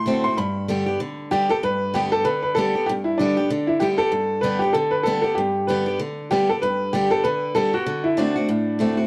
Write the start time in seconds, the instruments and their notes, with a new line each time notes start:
Already playing: steel-string acoustic guitar A2, upright piano C6
0.06 steel-string acoustic guitar D3 A3 C4 F#4
0.24 steel-string acoustic guitar C4 F#4, upright piano C6
0.37 steel-string acoustic guitar G2, upright piano B5
0.68 steel-string acoustic guitar D3 G3 B3 G4
0.86 steel-string acoustic guitar B3 G4
1.00 steel-string acoustic guitar D3
1.31 steel-string acoustic guitar D3 G3 B3 G4, upright piano G4
1.49 steel-string acoustic guitar B3 G4, upright piano A4
1.63 steel-string acoustic guitar G2, upright piano B4
1.94 steel-string acoustic guitar D3 G3 B3 G4, upright piano G4
2.12 steel-string acoustic guitar B3 G4, upright piano A4
2.25 steel-string acoustic guitar D3, upright piano B4
2.43 upright piano B4
2.55 steel-string acoustic guitar D3 G3 B3 G4, upright piano A4
2.75 steel-string acoustic guitar B3 G4
2.86 steel-string acoustic guitar G2, upright piano G4
3.04 upright piano E4
3.18 steel-string acoustic guitar D3 G3 B3 G4, upright piano D4
3.37 steel-string acoustic guitar B3 G4
3.50 steel-string acoustic guitar D3
3.67 upright piano E4
3.80 steel-string acoustic guitar D3 G3 B3 G4, upright piano G4
3.98 steel-string acoustic guitar B3 G4, upright piano A4
4.12 steel-string acoustic guitar G2
4.41 steel-string acoustic guitar D3 G3 B3 G4, upright piano B4
4.59 upright piano G4, steel-string acoustic guitar G4
4.63 steel-string acoustic guitar B3
4.73 steel-string acoustic guitar D3, upright piano A4
4.91 upright piano B4
5.03 steel-string acoustic guitar D3 G3 B3, upright piano A4
5.07 steel-string acoustic guitar G4
5.22 steel-string acoustic guitar G4, upright piano A4
5.26 steel-string acoustic guitar B3
5.35 steel-string acoustic guitar G2, upright piano G4
5.67 steel-string acoustic guitar D3 G3 B3 G4, upright piano B4
5.86 steel-string acoustic guitar B3 G4
5.99 steel-string acoustic guitar D3
6.31 steel-string acoustic guitar D3 G3 B3 G4, upright piano G4
6.49 steel-string acoustic guitar B3 G4, upright piano A4
6.62 steel-string acoustic guitar G2, upright piano B4
6.93 steel-string acoustic guitar D3 G3 B3 G4, upright piano G4
7.10 steel-string acoustic guitar B3 G4, upright piano A4
7.24 steel-string acoustic guitar D3, upright piano B4
7.55 steel-string acoustic guitar D3 G3 B3 G4, upright piano A4
7.73 steel-string acoustic guitar B3 G4, upright piano F#4
7.86 steel-string acoustic guitar D3
8.04 upright piano E4
8.17 steel-string acoustic guitar D3 A3 C4 F#4, upright piano D4
8.36 steel-string acoustic guitar C4 F#4
8.49 steel-string acoustic guitar A2
8.79 steel-string acoustic guitar D3 A3 C4 F#4
8.97 steel-string acoustic guitar C4 F#4